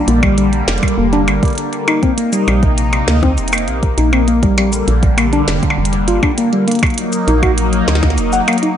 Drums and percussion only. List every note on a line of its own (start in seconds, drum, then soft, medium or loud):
0.08 closed hi-hat medium
0.23 kick loud
0.23 closed hi-hat soft
0.23 percussion blips medium
0.38 closed hi-hat medium
0.53 closed hi-hat soft
0.68 snare loud
0.68 closed hi-hat medium
0.78 closed hi-hat medium
0.83 kick loud
0.83 closed hi-hat soft
0.83 percussion blips medium
0.88 closed hi-hat soft
1.13 closed hi-hat soft
1.28 closed hi-hat medium
1.28 percussion blips medium
1.43 kick loud
1.43 closed hi-hat soft
1.45 closed hi-hat soft
1.48 closed hi-hat soft
1.50 closed hi-hat soft
1.53 closed hi-hat soft
1.55 closed hi-hat soft
1.58 closed hi-hat loud
1.73 closed hi-hat soft
1.88 closed hi-hat medium
1.88 percussion blips medium
2.03 kick loud
2.03 closed hi-hat soft
2.18 closed hi-hat medium
2.33 closed hi-hat soft
2.33 cabasa medium
2.48 closed hi-hat medium
2.48 percussion blips medium
2.63 kick loud
2.63 closed hi-hat soft
2.78 closed hi-hat medium
2.93 closed hi-hat soft
2.93 percussion blips medium
3.08 snare loud
3.08 closed hi-hat medium
3.23 kick loud
3.23 closed hi-hat soft
3.23 percussion blips medium
3.38 closed hi-hat medium
3.38 cabasa medium
3.48 closed hi-hat medium
3.53 closed hi-hat soft
3.53 cabasa medium
3.53 percussion blips medium
3.58 closed hi-hat medium
3.68 closed hi-hat medium
3.83 kick loud
3.83 closed hi-hat soft
3.98 closed hi-hat medium
4.13 closed hi-hat soft
4.13 percussion blips medium
4.28 closed hi-hat medium
4.43 kick loud
4.43 closed hi-hat soft
4.58 closed hi-hat medium
4.58 percussion blips medium
4.73 closed hi-hat soft
4.73 cabasa medium
4.88 closed hi-hat medium
5.03 kick loud
5.03 closed hi-hat soft
5.18 closed hi-hat medium
5.18 percussion blips medium
5.33 closed hi-hat soft
5.48 snare loud
5.48 closed hi-hat medium
5.63 kick loud
5.63 closed hi-hat soft
5.70 percussion blips medium
5.85 closed hi-hat medium
5.93 closed hi-hat soft
6.08 closed hi-hat medium
6.23 kick loud
6.23 closed hi-hat soft
6.23 percussion blips medium
6.38 closed hi-hat medium
6.53 closed hi-hat soft
6.68 closed hi-hat medium
6.71 closed hi-hat medium
6.75 closed hi-hat soft
6.79 closed hi-hat soft
6.83 kick loud
6.83 closed hi-hat soft
6.83 percussion blips medium
6.87 closed hi-hat soft
6.90 closed hi-hat soft
6.94 closed hi-hat soft
6.98 closed hi-hat medium
7.13 closed hi-hat soft
7.13 cabasa medium
7.28 closed hi-hat medium
7.43 kick loud
7.43 closed hi-hat soft
7.43 percussion blips medium
7.58 closed hi-hat medium
7.73 closed hi-hat soft
7.88 snare loud
7.88 closed hi-hat medium
7.88 percussion blips medium
7.95 snare medium
8.03 kick loud
8.03 snare medium
8.03 closed hi-hat soft
8.03 percussion blips medium
8.10 snare medium
8.18 closed hi-hat medium
8.18 cabasa medium
8.33 closed hi-hat soft
8.33 cabasa medium
8.48 closed hi-hat medium
8.48 percussion blips medium
8.53 closed hi-hat medium
8.58 closed hi-hat soft
8.63 closed hi-hat soft